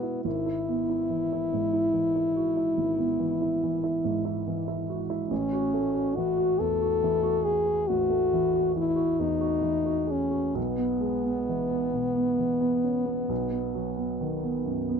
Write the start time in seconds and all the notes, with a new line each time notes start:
Already playing: B2 G#3 B3 E4 F#4
0.03 E4
0.25 G#1 E4
0.46 E4
0.69 B3
0.90 E4
1.10 E3
1.33 E4
1.53 G#2
1.73 E4
1.93 E3
2.16 E4
2.36 F#4
2.57 E4
2.78 G#1
2.99 B3
3.19 E3
3.42 E4
3.63 E3
3.84 E4
4.04 G#2
4.25 E4
4.47 E3
4.68 E4
4.90 F#4
5.10 E4
5.29 A1 C#4
5.53 F#4
5.73 A3
5.94 F#4
6.16 E3 F#4
6.37 F#4
6.60 E2 A4
6.81 F#4
7.03 E3
7.23 F#4
7.44 G#4
7.66 F#4
7.87 A1 F#4
8.10 A3
8.33 E3
8.54 F#4
8.74 E3 E4
8.96 F#4
9.19 E2 D#4
9.41 F#4
9.62 E3
9.86 F#4
10.07 C#4 G#4
10.31 F#4
10.55 B1 B3
10.77 B3
11.00 G#3
11.24 B3
11.49 E3
11.70 B3
11.93 B2
12.16 B3
12.39 E3
12.61 B3
12.84 C#4
13.06 B3
13.29 B1
13.51 B3
13.75 F#3
13.97 B3
14.21 D#3
14.43 B3
14.65 F#2
14.89 B3